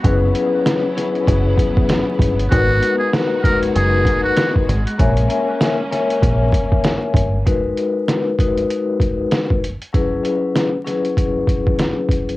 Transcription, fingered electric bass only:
X:1
M:4/4
L:1/16
Q:"Swing 16ths" 1/4=97
K:G#m
V:1 name="Fingered electric bass" clef=bass
F,,,2 z6 F,,,2 z4 =G,,,2 | G,,,2 z6 F,,,2 z4 G,,, z | A,,,2 z6 A,,,2 z4 =G,,,2 | z16 |
z16 |]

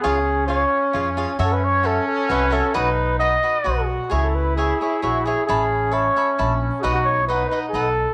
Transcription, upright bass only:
X:1
M:3/4
L:1/8
Q:1/4=133
K:C#m
V:1 name="Upright bass" clef=bass
C,,4 ^E,,2 | F,,4 =C,,2 | B,,,4 B,,,2 | C,,4 ^A,,,2 |
A,,,4 ^A,,,2 | B,,,4 B,,,2 |]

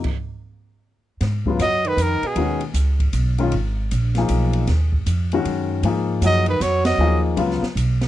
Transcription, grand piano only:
X:1
M:3/4
L:1/8
Q:"Swing" 1/4=156
K:Fm
V:1 name="Grand piano"
z6 | [K:G#dor] z [C,F,B,E] z4 | [D,G,CF] z4 [D,G,CE] | z3 [E,A,DG]3 |
z3 [D,G,CF]3 | [E,A,DG]2 [E,A,DG] z3 | [E,A,DG]2 [C,F,B,E] z3 |]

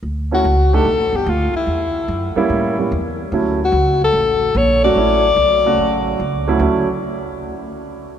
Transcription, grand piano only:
X:1
M:4/4
L:1/8
Q:"Swing" 1/4=146
K:D
V:1 name="Grand piano"
z [A,CEF] z [A,D_EG] z4 | z3 [G,_B,CE]2 [G,B,CE] z2 | [F,A,CE] z6 [F,A,CF] | [F,A,CE] z2 [C,F,A,F]3 z [D,,F,A,CE] |
[F,A,CE] z6 z |]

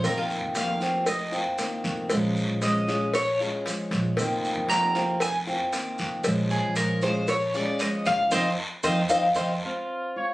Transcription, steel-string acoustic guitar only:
X:1
M:4/4
L:1/8
Q:1/4=116
K:Bbm
V:1 name="Steel-string acoustic guitar"
[E,B,CF]2 [E,B,CF] [B,CF] z [B,CF] [E,B,CF]2 | [F,A,DF]2 [F,A,DF] [A,DF] z [A,DF] [F,A,DF]2 | [E,B,CF]2 [E,B,CF] [B,CF] z [B,CF] [E,B,CF]2 | [F,A,DF]2 [F,A,DF] [A,DF] z [A,DF] [F,A,DF]2 |
[CEF] z [CEF] [CEF] [CEF] z3 |]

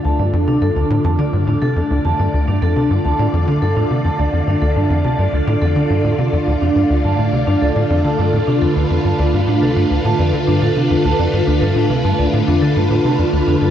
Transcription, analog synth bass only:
X:1
M:4/4
L:1/16
Q:1/4=105
K:Ddor
V:1 name="Analog synth bass" clef=bass
D,, G,, F,, C, G,, D,, A,, F,, D, G,, A,, C, F,, D,, F,, G,, | D,, G,, F,, C, G,, D,, A,, F,, D, G,, A,, C, F,, D,, F,, G,, | D,, G,, F,, C, G,, D,, A,, F,, D, G,, A,, C, F,, D,, F,, G,, | D,, G,, A,, C, G,, D,, A,, F,, D, G,, A,, C, F,, D,, F,, G,, |
D,, G,, A,, C, G,, D,, A,, F,, D, G,, A,, C, F,, D,, F,, G,, | D,, G,, A,, C, G,, D,, A,, F,, D, G,, A,, C, F,, D,, F,, G,, |]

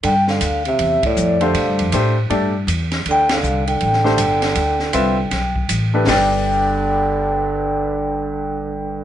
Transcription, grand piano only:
X:1
M:4/4
L:1/8
Q:"Swing" 1/4=159
K:Gmix
V:1 name="Grand piano"
z6 z [A,DGc]- | [A,DGc]2 [A,DGc] z [A,DGd] z3 | z4 z [A,DGc] z2 | z2 [CFBe] z4 [A,DGB] |
[G,,G,DBd]8- | [G,,G,DBd]8 |]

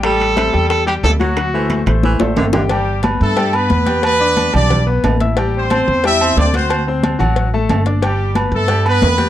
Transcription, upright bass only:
X:1
M:4/4
L:1/8
Q:1/4=180
K:G
V:1 name="Upright bass" clef=bass
A,,,3 E,,3 D,,2- | D,,3 A,,,2 A,,, G,,,2- | G,,,3 G,,3 E,,2- | E,,3 B,,,3 A,,,2- |
A,,,3 E,,3 D,,2- | D,,3 A,,,3 G,,,2- | G,,,3 G,,3 E,,2 |]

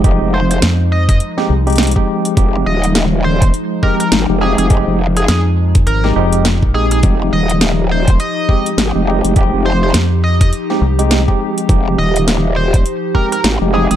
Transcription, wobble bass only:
X:1
M:4/4
L:1/16
Q:"Swing 16ths" 1/4=103
K:Fm
V:1 name="Wobble bass" clef=bass
F,,, F,,,3 z12 | F,,,2 E,,,6 z4 A,,, F,,,2 F,,,- | F,,, F,,,3 z12 | F,,,2 E,,,6 z4 A,,, F,,,2 F,,,- |
F,,, F,,,3 z12 | F,,,2 E,,,6 z4 A,,, F,,,2 F,,, |]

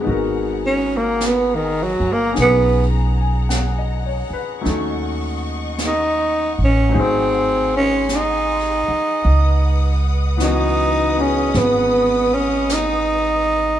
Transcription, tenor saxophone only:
X:1
M:4/4
L:1/16
Q:"Swing" 1/4=52
K:G#m
V:1 name="Tenor saxophone"
z2 C A, B, D, F, A, B,2 z6 | z4 D2 C2 ^B,2 C2 D4- | D2 z2 D2 C2 B,2 C2 D4 |]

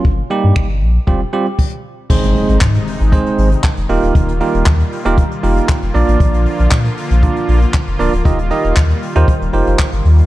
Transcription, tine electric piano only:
X:1
M:4/4
L:1/16
Q:1/4=117
K:Fmix
V:1 name="Tine electric piano"
z2 [G,B,EG]3 z3 [G,CFG] z [G,CFG] z4 z | [K:Eb] [A,CEAc]4 z4 [A,CEAc]3 z3 [B,EFGB]2- | [B,EFGB] z [B,EFGB]2 z3 [B,EFGB] z2 [B,EFGB]3 z [B,DFBd]2- | [B,DFBd]4 z4 [B,DFBd]3 z3 [B,DFBd] z |
[EFGBe] z [EFGBe]2 z3 [EFGBc] z2 [EFGBc]3 z3 |]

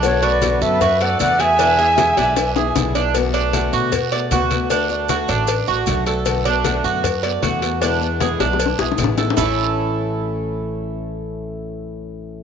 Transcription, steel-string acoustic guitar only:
X:1
M:4/4
L:1/8
Q:1/4=154
K:A
V:1 name="Steel-string acoustic guitar"
[B,,D,A,B,F] [A,B,F] [B,,D,A,B,F]2 z [A,B,F] [B,,D,A,B,F] [A,B,F] | [B,,D,G,B,E] [G,B,E] [B,,D,G,B,E]2 z [G,B,E] [B,,D,G,B,E] [G,B,E] | [B,,D,A,B,F] [A,B,F] [B,,D,A,B,F]2 z [A,B,F] [B,,D,A,B,F] [A,B,F] | [D,A,DF] [A,DF] [D,A,DF]2 z [A,DF] [D,A,DF] [A,DF] |
[B,,D,A,B,F] [A,B,F] [B,,D,A,B,F]2 z [A,B,F] [B,,D,A,B,F] [A,B,F] | [B,,D,G,B,E] [G,B,E] [B,,D,G,B,E]2 z [G,B,E] [B,,D,G,B,E] [G,B,E] | [A,,E,A,CE]8- | [A,,E,A,CE]8 |]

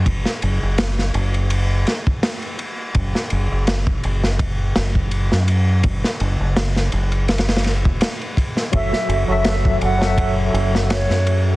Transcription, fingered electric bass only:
X:1
M:4/4
L:1/16
Q:"Swing 16ths" 1/4=83
K:F#m
V:1 name="Fingered electric bass" clef=bass
F,,, z F,,, F,,,3 F,,,4 z6 | F,,, z F,,, F,,,3 F,,,4 F,,,3 F,,3 | F,,, z F,,, F,,,3 F,,,4- F,,, E,,, z4 | F,,, z F,,, F,,,3 F,,,4 F,,,3 F,,3 |]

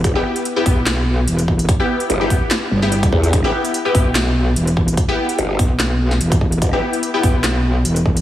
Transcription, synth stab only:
X:1
M:4/4
L:1/16
Q:"Swing 16ths" 1/4=146
K:Em
V:1 name="Synth stab"
z [B,EG]4 [B,EG] z8 z2 | z [B,EG]4 [B,EG] z4 z [B,EG] z4 | z [B,EG]4 [B,EG] z8 z2 | z [B,EG]4 z8 z3 |
z [B,EG]4 [B,EG] z8 z2 |]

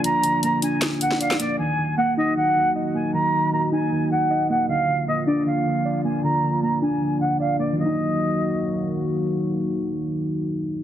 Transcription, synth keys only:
X:1
M:4/4
L:1/8
Q:1/4=155
K:Ebm
V:1 name="Synth keys"
[=D,B,=d] D, B, =D D, D, d B, | E, E, B, E E, E, e B, | E, E, B, E E, E, e B, | =D, D, B, =D D, D, =d B, |
=D, D, B, =D D, D, =d B, | [E,G,B,E]8- | [E,G,B,E]8 |]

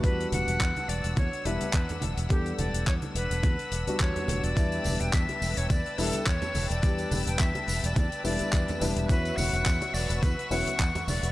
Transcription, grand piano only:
X:1
M:4/4
L:1/16
Q:"Swing 16ths" 1/4=106
K:Edor
V:1 name="Grand piano"
[G,B,DF]8- [G,B,DF]2 [G,B,DE] z4 z | [G,B,DA]8- [G,B,DA]2 z [G,B,DF]4- [G,B,DF] | [G,B,DE]8- [G,B,DE]2 [G,B,DE] z4 z | [G,B,DG]8- [G,B,DG]2 [G,B,DE]4 [G,B,DE]2 |
[F,B,CE]8- [F,B,CE]2 [F,B,CE] z4 z |]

